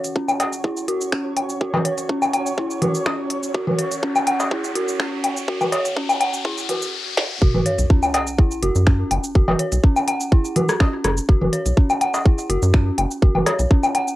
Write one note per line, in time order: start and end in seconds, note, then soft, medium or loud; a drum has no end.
0.00 6.93 C#4 medium
0.00 6.93 F#4 medium
0.00 6.93 C#5 medium
0.00 6.93 F#5 medium
0.00 riser medium
0.04 open hi-hat soft
0.04 shaker medium
0.16 0.18 C#4 medium
0.16 kick loud
0.28 low woodblock medium
0.28 shaker soft
0.40 0.44 F#5 loud
0.40 open hi-hat medium
0.40 cowbell medium
0.40 low woodblock medium
0.53 shaker medium
0.64 0.68 E4 medium
0.64 kick loud
0.77 shaker soft
0.88 0.92 F#4 loud
0.88 open hi-hat medium
1.01 shaker medium
1.12 1.15 C#4 medium
1.12 finger snap loud
1.12 kick loud
1.37 open hi-hat medium
1.37 low woodblock medium
1.49 shaker medium
1.61 1.65 F#4 medium
1.61 kick loud
1.73 1.79 F#4 medium
1.73 cowbell medium
1.73 low conga medium
1.73 low woodblock medium
1.85 1.89 C#5 medium
1.85 open hi-hat medium
1.98 open hi-hat soft
1.98 shaker medium
2.09 2.12 C#4 medium
2.09 kick loud
2.22 low woodblock medium
2.22 shaker soft
2.33 2.38 F#5 loud
2.33 open hi-hat medium
2.33 low woodblock medium
2.46 shaker medium
2.58 2.62 E4 medium
2.58 kick loud
2.70 shaker soft
2.82 2.86 F#4 loud
2.82 open hi-hat medium
2.82 low conga loud
2.95 shaker soft
3.06 3.09 C#4 medium
3.06 finger snap loud
3.06 kick loud
3.06 cowbell medium
3.30 open hi-hat medium
3.43 shaker medium
3.54 3.59 F#4 medium
3.54 kick loud
3.67 3.73 F#4 medium
3.67 low conga medium
3.78 3.83 C#5 medium
3.78 open hi-hat medium
3.91 open hi-hat soft
3.91 shaker soft
4.03 4.05 C#4 medium
4.03 kick loud
4.16 low woodblock medium
4.16 shaker soft
4.27 4.31 F#5 loud
4.27 open hi-hat medium
4.27 low woodblock medium
4.40 cowbell medium
4.40 shaker soft
4.51 4.55 E4 medium
4.51 kick loud
4.64 shaker soft
4.75 4.80 F#4 loud
4.75 open hi-hat loud
4.88 shaker medium
5.00 5.02 C#4 medium
5.00 finger snap loud
5.00 kick loud
5.24 open hi-hat loud
5.24 low woodblock medium
5.37 shaker medium
5.48 5.52 F#4 medium
5.48 kick loud
5.61 5.66 F#4 medium
5.61 low conga medium
5.61 low woodblock medium
5.61 shaker soft
5.72 5.76 C#5 medium
5.72 open hi-hat medium
5.72 cowbell medium
5.85 open hi-hat soft
5.85 shaker soft
5.96 5.99 C#4 medium
5.96 kick loud
6.09 low woodblock medium
6.09 shaker soft
6.20 6.25 F#5 loud
6.20 open hi-hat medium
6.20 low woodblock medium
6.33 shaker soft
6.45 6.49 E4 medium
6.45 kick loud
6.58 shaker soft
6.69 6.75 F#4 medium
6.69 open hi-hat medium
6.69 low conga medium
6.82 shaker soft
7.17 snare medium
7.42 7.49 F#1 loud
7.42 7.46 F#4 medium
7.42 kick loud
7.42 sub drop medium
7.54 7.61 F#1 medium
7.54 7.60 F#4 medium
7.54 low conga medium
7.66 7.70 C#5 medium
7.66 open hi-hat medium
7.79 7.85 B1 medium
7.79 open hi-hat soft
7.79 shaker medium
7.90 7.93 C#4 medium
7.90 kick loud
8.03 low woodblock medium
8.03 shaker soft
8.14 8.18 F#5 loud
8.14 open hi-hat medium
8.14 cowbell medium
8.14 low woodblock medium
8.27 shaker medium
8.38 8.43 E4 medium
8.38 kick loud
8.51 shaker soft
8.63 8.70 F#1 medium
8.63 8.67 F#4 loud
8.63 open hi-hat medium
8.75 9.04 F#2 loud
8.75 shaker medium
8.87 8.89 C#4 medium
8.87 finger snap loud
8.87 kick loud
9.11 9.19 F#1 loud
9.11 open hi-hat medium
9.11 low woodblock medium
9.24 shaker medium
9.35 9.43 F#1 loud
9.35 9.39 F#4 medium
9.35 kick loud
9.48 9.55 F#1 medium
9.48 9.54 F#4 medium
9.48 cowbell medium
9.48 low conga loud
9.48 low woodblock medium
9.59 9.63 C#5 medium
9.59 open hi-hat loud
9.72 9.79 B1 medium
9.72 open hi-hat soft
9.72 shaker medium
9.83 9.86 C#4 medium
9.83 kick loud
9.96 low woodblock medium
9.96 shaker soft
10.08 10.12 F#5 loud
10.08 open hi-hat loud
10.08 low woodblock medium
10.20 shaker medium
10.32 10.36 E4 medium
10.32 kick loud
10.45 shaker soft
10.56 10.60 F#4 loud
10.56 open hi-hat medium
10.56 low conga loud
10.69 cross-stick medium
10.69 shaker medium
10.80 10.83 C#4 medium
10.80 finger snap loud
10.80 kick loud
10.80 cowbell medium
11.04 11.20 F#1 medium
11.04 cross-stick medium
11.04 open hi-hat medium
11.17 shaker medium
11.29 11.36 F#1 loud
11.29 11.33 F#4 medium
11.29 kick loud
11.41 11.49 F#1 medium
11.41 11.47 F#4 medium
11.41 low conga loud
11.53 11.57 C#5 medium
11.53 open hi-hat loud
11.66 11.73 B1 medium
11.66 open hi-hat soft
11.66 shaker medium
11.77 11.79 C#4 medium
11.77 kick loud
11.90 low woodblock medium
11.90 shaker soft
12.01 12.05 F#5 loud
12.01 open hi-hat medium
12.01 low woodblock medium
12.14 cowbell medium
12.14 shaker medium
12.25 12.30 E4 medium
12.25 kick loud
12.38 shaker soft
12.50 12.57 F#1 medium
12.50 12.54 F#4 loud
12.50 open hi-hat loud
12.62 12.91 F#2 loud
12.62 shaker soft
12.74 12.76 C#4 medium
12.74 finger snap loud
12.74 kick loud
12.98 13.06 F#1 loud
12.98 open hi-hat loud
12.98 low woodblock medium
13.11 shaker medium
13.22 13.30 F#1 loud
13.22 13.26 F#4 medium
13.22 kick loud
13.35 13.42 F#1 medium
13.35 13.41 F#4 medium
13.35 low conga medium
13.35 low woodblock medium
13.46 13.51 C#5 medium
13.46 cross-stick medium
13.46 open hi-hat medium
13.46 cowbell medium
13.59 13.66 B1 medium
13.59 open hi-hat soft
13.59 shaker soft
13.71 13.73 C#4 medium
13.71 kick loud
13.83 low woodblock medium
13.83 shaker soft
13.95 13.99 F#5 loud
13.95 open hi-hat loud
13.95 low woodblock medium
14.08 shaker soft